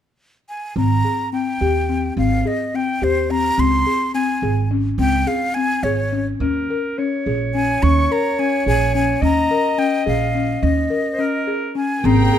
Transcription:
0.49 0.75 G#5 medium
0.76 1.00 G#1 medium
0.76 0.92 C4 medium
0.76 1.29 A#5 medium
1.05 1.20 G#4 medium
1.33 1.48 C4 medium
1.33 2.14 G5 medium
1.61 2.09 D#2 medium
1.61 1.77 G4 medium
1.89 2.05 C4 medium
2.17 2.41 G#1 medium
2.17 2.33 C4 medium
2.17 2.49 F5 medium
2.45 2.61 G#4 medium
2.45 2.77 D#5 medium
2.74 2.90 C4 medium
2.74 3.05 G5 medium
3.02 3.50 D#2 medium
3.02 3.17 G4 medium
3.02 3.32 C5 medium
3.31 3.46 C4 medium
3.31 3.61 A#5 medium
3.58 3.82 C#2 medium
3.58 3.74 C4 medium
3.58 4.14 C6 loud
3.86 4.02 G#4 medium
4.14 4.30 C4 medium
4.14 4.68 G#5 medium
4.42 4.91 G#1 medium
4.42 4.58 G#4 medium
4.71 4.86 C#4 medium
4.98 5.23 C#2 medium
4.98 5.14 C4 medium
4.98 5.29 G5 medium
5.27 5.43 G#4 medium
5.27 5.56 F5 medium
5.54 5.72 C4 medium
5.54 5.85 G#5 medium
5.83 6.32 G#1 medium
5.83 6.00 G#4 medium
5.83 6.26 C#5 medium
6.12 6.28 C#4 medium
6.40 6.65 D#2 medium
6.40 6.57 C#4 medium
6.40 7.00 A#4 medium
6.70 6.86 A#4 medium
6.98 7.14 C#4 medium
6.98 9.23 C#5 medium
7.26 7.74 A#1 medium
7.26 7.42 G#4 medium
7.54 7.70 C#4 medium
7.54 7.84 G#5 medium
7.83 8.06 D#2 medium
7.83 7.98 C#4 medium
7.83 8.13 C#6 medium
8.11 8.26 A#4 medium
8.11 8.41 A#5 medium
8.39 8.54 C#4 medium
8.39 8.67 G#5 medium
8.66 9.14 A#1 medium
8.66 8.82 G#4 medium
8.66 8.93 G#5 medium
8.95 9.10 C#4 medium
8.95 9.21 G#5 medium
9.22 9.46 D#2 loud
9.22 9.38 C#4 medium
9.22 10.92 D#5 medium
9.22 9.80 A#5 medium
9.51 9.66 A#4 medium
9.78 9.94 C#4 medium
9.78 10.06 G5 medium
10.06 10.55 A#1 medium
10.06 10.21 G#4 medium
10.06 10.65 F5 medium
10.35 10.50 C#4 medium
10.63 10.87 D#2 medium
10.63 10.78 C#4 medium
10.63 11.53 D#5 medium
10.90 11.06 A#4 medium
11.12 11.21 C5 medium
11.19 11.34 C#4 medium
11.19 11.76 A#4 medium
11.47 11.63 G#4 medium
11.75 11.91 C#4 medium
11.75 12.07 G#5 medium
12.01 12.28 G#1 medium
12.01 12.39 C3 medium
12.01 12.39 A#3 medium
12.01 12.19 C4 medium
12.01 12.39 G#4 medium
12.01 12.39 G5 medium
12.05 12.39 A#5 medium
12.33 12.39 G#4 medium

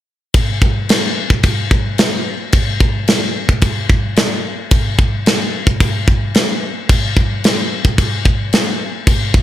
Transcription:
0.34 kick loud
0.34 crash medium
0.62 kick medium
0.89 snare loud
0.89 crash medium
1.30 kick medium
1.43 kick loud
1.43 crash medium
1.71 kick medium
1.98 snare loud
1.98 crash medium
2.52 kick loud
2.52 crash medium
2.80 kick medium
3.07 snare loud
3.07 crash medium
3.49 kick medium
3.61 kick loud
3.61 crash medium
3.90 kick medium
4.16 snare loud
4.16 crash medium
4.71 kick loud
4.71 crash medium
4.99 kick medium
5.26 snare loud
5.26 crash medium
5.67 kick medium
5.80 kick loud
5.80 crash medium
6.08 kick medium
6.34 snare loud
6.34 crash medium
6.89 kick loud
6.89 crash medium
7.17 kick medium
7.44 snare loud
7.44 crash medium
7.85 kick medium
7.98 kick medium
7.98 crash medium
8.25 kick medium
8.53 snare loud
8.53 crash medium
9.07 kick loud
9.07 crash medium
9.34 kick medium

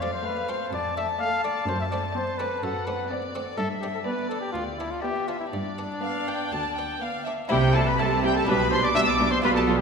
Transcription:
0.00 0.13 F2 soft
0.00 0.14 F2 medium
0.00 0.36 A3 soft
0.00 0.36 C4 soft
0.00 0.36 F4 soft
0.00 0.13 D5 medium
0.00 0.70 F5 medium
0.13 0.27 C5 medium
0.23 0.60 A3 medium
0.23 0.52 B4 medium
0.23 0.59 F5 medium
0.49 0.66 A3 soft
0.49 0.66 C4 soft
0.49 0.66 F4 soft
0.49 0.73 C5 medium
0.71 1.10 F2 medium
0.71 1.09 F2 soft
0.71 0.96 D5 medium
0.71 2.59 A5 medium
0.97 1.31 A3 soft
0.97 1.31 D4 soft
0.97 1.07 E5 medium
1.19 1.56 A3 medium
1.19 1.55 D5 medium
1.19 1.43 F5 loud
1.44 1.61 A3 soft
1.44 1.62 D4 soft
1.44 1.66 D5 medium
1.67 2.05 F#2 medium
1.67 2.05 F#2 soft
1.67 1.79 C5 medium
1.80 1.85 E5 medium
1.91 2.26 A3 soft
1.91 2.27 C4 soft
1.91 2.27 D4 soft
1.91 2.02 D5 medium
2.13 2.51 C4 medium
2.13 2.40 C5 medium
2.13 2.50 D5 soft
2.38 2.56 A3 soft
2.38 2.57 C4 soft
2.38 2.57 D4 soft
2.38 2.65 B4 medium
2.63 3.01 F#2 medium
2.63 3.00 F#2 soft
2.63 2.87 A4 medium
2.63 3.11 F#5 medium
2.85 3.21 A3 soft
2.85 3.22 C4 soft
2.85 3.22 D4 soft
2.85 3.10 B4 medium
3.10 3.46 C4 medium
3.10 3.46 D5 medium
3.10 3.59 D5 medium
3.35 3.52 A3 soft
3.35 3.52 C4 soft
3.35 3.53 D4 soft
3.57 3.96 G2 medium
3.57 3.95 G2 soft
3.57 3.68 A4 medium
3.57 4.06 E5 medium
3.81 4.18 B3 soft
3.81 4.18 D4 soft
3.81 3.87 G4 medium
3.94 4.00 A4 medium
4.05 4.42 B3 soft
4.05 4.29 B4 medium
4.05 4.42 D5 soft
4.05 5.02 D5 medium
4.29 4.48 B3 soft
4.29 4.49 D4 soft
4.29 4.40 A4 medium
4.41 4.52 G4 medium
4.52 4.93 D2 medium
4.52 4.93 D2 soft
4.52 4.64 F4 medium
4.78 5.15 B3 soft
4.78 5.15 D4 soft
4.78 4.92 E4 medium
4.90 5.02 F4 medium
5.02 5.41 B3 medium
5.02 5.29 G4 medium
5.02 5.39 D5 medium
5.02 5.52 E5 medium
5.28 5.46 B3 soft
5.28 5.47 D4 soft
5.28 5.39 F4 medium
5.40 5.45 E4 medium
5.52 5.92 G2 medium
5.52 5.91 G2 soft
5.52 6.99 D4 medium
5.52 7.23 D5 medium
5.78 6.14 B3 soft
5.78 6.14 D4 soft
6.03 6.40 B3 medium
6.03 6.26 F5 medium
6.27 6.46 B3 soft
6.27 6.46 D4 soft
6.27 6.52 G5 medium
6.51 6.91 D2 medium
6.51 6.91 D2 soft
6.51 6.77 A5 medium
6.76 7.14 B3 soft
6.76 7.14 D4 soft
6.76 7.01 G5 soft
7.02 7.39 B3 soft
7.02 7.27 F5 medium
7.24 7.45 B3 soft
7.24 7.45 D4 soft
7.24 7.32 E5 medium
7.48 7.95 C2 medium
7.48 7.94 C3 loud
7.48 7.91 C3 medium
7.48 7.59 G3 medium
7.48 8.44 C4 medium
7.48 7.56 E4 medium
7.48 8.45 E4 medium
7.48 7.76 G4 medium
7.48 7.74 G5 loud
7.72 7.80 E4 medium
7.72 7.88 A4 medium
7.72 7.88 A5 medium
7.77 7.85 G3 medium
7.87 8.01 B4 medium
7.87 8.00 B5 medium
7.98 8.43 C2 medium
7.98 8.42 C3 medium
7.98 8.39 C3 medium
7.98 8.08 G3 medium
7.98 8.06 E4 medium
7.98 8.22 A4 medium
7.98 8.24 A5 medium
8.22 8.32 G3 medium
8.22 8.30 E4 medium
8.22 8.37 G4 medium
8.22 8.36 G5 loud
8.35 8.47 A4 medium
8.35 8.49 A5 medium
8.45 8.90 B2 medium
8.45 8.87 B2 medium
8.45 8.56 G3 medium
8.45 9.40 D4 medium
8.45 8.55 D4 medium
8.45 9.41 G4 medium
8.45 8.70 B4 medium
8.49 8.91 B1 medium
8.49 8.72 B5 loud
8.71 8.81 G3 medium
8.71 8.80 D4 medium
8.71 8.82 C5 medium
8.71 8.85 C6 loud
8.83 8.89 D5 medium
8.83 8.97 D6 medium
8.95 9.39 B1 medium
8.95 9.39 B2 medium
8.95 9.36 B2 medium
8.95 9.05 G3 medium
8.95 9.03 D4 medium
8.95 9.01 E5 loud
8.95 9.09 E6 loud
9.06 9.33 D5 medium
9.06 9.33 D6 loud
9.20 9.28 G3 medium
9.20 9.28 D4 medium
9.31 9.43 C5 medium
9.31 9.37 C6 medium
9.42 9.81 B1 medium
9.42 9.81 B2 loud
9.42 9.81 B2 medium
9.42 9.52 G3 medium
9.42 9.81 F4 medium
9.42 9.51 F4 medium
9.42 9.81 G4 medium
9.42 9.49 B4 medium
9.42 9.50 B5 loud
9.54 9.80 A4 medium
9.54 9.64 A5 medium
9.68 9.76 G3 medium
9.68 9.76 F4 medium

